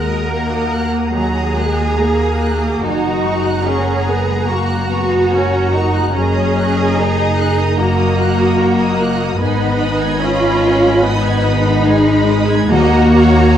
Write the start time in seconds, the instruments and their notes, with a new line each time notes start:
Already playing: double bass section D#2, harp D#3 A#3 D#4, viola section G#3, cello section A#4, violin section F#5 A#5
0.07 harp F#4, violin section D#6
0.28 viola section A#3, harp A#4, violin section A#5
0.50 harp F#4, violin section D#6
0.71 harp A#4, violin section F#6
0.92 harp A#3, violin section D#6
1.14 harp D#3, viola section F#3, cello section G#4, violin section A#5
1.35 harp D#4, violin section D#6
1.56 viola section G#3, harp A#3, violin section F#6
1.77 harp F#4, violin section D#6
1.99 viola section A#3, harp A#4, violin section A#5
2.19 harp F#4, violin section D#6
2.40 harp A#4, violin section F#6
2.61 harp A#3, violin section D#6
2.82 double bass section F#1, harp F#2, viola section D#4, cello section F#4, violin section F#5 G#5 A#5
3.03 harp C#3, violin section A#5
3.23 harp G#3, violin section C#6
3.43 harp F#4, violin section F#6
3.64 viola section C#4, cello section G#4, harp A#4, violin section C#6
3.83 harp F#4, violin section A#5
4.05 viola section B3, harp A#4, violin section G#5
4.27 harp G#3, violin section A#5
4.48 harp F#2, viola section A#3, cello section F#4, violin section C#6
4.69 harp C#3, violin section F#6
4.89 harp G#3, viola section B3, violin section C#6
5.10 harp F#4, violin section A#5
5.32 viola section C#4, harp A#4, violin section G#5
5.52 harp F#4, violin section A#5
5.74 viola section D#4, harp A#4, violin section C#6
5.95 harp G#3, violin section F#6
6.14 double bass section F#1, harp F#2, viola section C#4, cello section G#4, violin section D#5 A#5
6.35 harp F#3, violin section D#6
6.57 harp A#3, violin section F#6
6.77 harp D#4, violin section D#6
6.97 viola section D#4, harp A#4, violin section A#5
7.17 harp D#4, violin section D#6
7.38 harp A#4, violin section F#6
7.58 harp A#3, violin section D#6
7.77 harp F#2, viola section A#3, cello section F#4, violin section A#5
7.98 harp F#3, violin section D#6
8.19 harp A#3, violin section F#6
8.38 harp D#4, violin section D#6
8.57 harp A#4, violin section A#5
8.79 harp D#4, violin section D#6
8.98 harp A#4, violin section F#6
9.20 harp A#3, violin section D#6
9.40 double bass section G#1, harp G#2, viola section B3, cello section D#4, violin section D#5 G#5 B5
9.61 harp D#3, violin section B5
9.81 harp G#3, violin section D#6
10.02 harp D#4, violin section G#6
10.22 viola section C#4, cello section F4, harp B4, violin section D#6
10.42 harp D#4, violin section B5
10.64 harp B4, violin section G#5
10.84 harp G#3, violin section B5
11.04 harp G#2, viola section B3, cello section D#4, violin section D#6
11.26 harp D#3, violin section G#6
11.46 harp G#3, violin section D#6
11.67 harp D#4, violin section B5
11.87 viola section G#3, harp B4, violin section G#5
12.08 harp D#4, violin section B5
12.29 harp B4, violin section D#6
12.49 harp G#3, violin section G#6
12.70 double bass section D#2, harp D#3, timpani D#3, viola section A#3, cello section F#4, violin section D#5 F#5 A#5
12.92 harp A#3
13.13 harp D#4, violin section C#5
13.53 viola section B3, violin section D#5 A#5